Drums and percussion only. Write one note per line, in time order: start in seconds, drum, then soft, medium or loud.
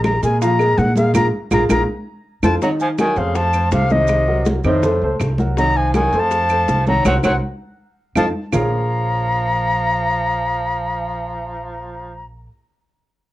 0.04 high bongo medium
0.04 high conga loud
0.04 claves medium
0.04 maracas soft
0.23 high bongo soft
0.23 high conga soft
0.23 maracas medium
0.41 high bongo medium
0.41 high conga soft
0.41 maracas medium
0.59 high bongo soft
0.59 high conga soft
0.59 claves medium
0.59 maracas soft
0.78 high bongo soft
0.78 low bongo medium
0.78 high conga medium
0.78 maracas soft
0.96 high conga medium
0.96 maracas medium
1.14 low bongo loud
1.14 high conga loud
1.14 claves medium
1.14 maracas loud
1.51 low bongo loud
1.51 high conga loud
1.51 claves loud
1.51 maracas loud
1.69 low bongo loud
1.69 high conga loud
1.69 claves medium
1.69 maracas loud
2.43 low bongo loud
2.43 high conga loud
2.43 claves loud
2.43 maracas loud
2.62 high bongo medium
2.62 high conga soft
2.62 maracas medium
2.80 high conga soft
2.80 maracas medium
2.98 high bongo medium
2.98 high conga medium
2.98 claves medium
2.98 maracas medium
3.16 high conga soft
3.16 maracas soft
3.35 high bongo medium
3.35 high conga soft
3.35 maracas medium
3.53 high conga soft
3.53 claves medium
3.53 maracas medium
3.71 high bongo medium
3.71 low bongo medium
3.71 high conga medium
3.71 maracas medium
3.89 high conga medium
3.89 maracas soft
4.08 high bongo medium
4.08 high conga soft
4.08 claves medium
4.08 maracas medium
4.28 high bongo soft
4.28 high conga soft
4.46 high bongo medium
4.46 high conga medium
4.46 maracas medium
4.64 high bongo soft
4.64 high conga soft
4.64 low conga medium
4.64 claves medium
4.64 maracas soft
4.83 high bongo medium
4.83 high conga soft
4.83 low conga medium
4.83 maracas medium
5.01 high conga soft
5.20 high bongo medium
5.20 low bongo medium
5.20 high conga soft
5.20 claves medium
5.20 maracas medium
5.38 high bongo soft
5.38 high conga loud
5.38 maracas soft
5.57 high bongo medium
5.57 high conga soft
5.57 maracas medium
5.75 high conga soft
5.94 high bongo medium
5.94 high conga medium
5.94 claves medium
5.94 maracas medium
6.13 high conga soft
6.13 maracas soft
6.31 high bongo medium
6.31 high conga soft
6.31 maracas medium
6.49 high conga soft
6.49 claves medium
6.49 maracas medium
6.68 high bongo medium
6.68 low bongo medium
6.68 high conga medium
6.68 maracas medium
6.86 high conga medium
6.86 maracas soft
7.05 low bongo medium
7.05 high conga loud
7.05 claves medium
7.05 maracas loud
7.23 low bongo medium
7.23 high conga medium
7.23 claves loud
7.23 maracas medium
8.15 low bongo medium
8.15 high conga medium
8.15 claves loud
8.15 maracas loud
8.52 low bongo medium
8.52 low conga loud
8.52 claves medium
8.52 maracas loud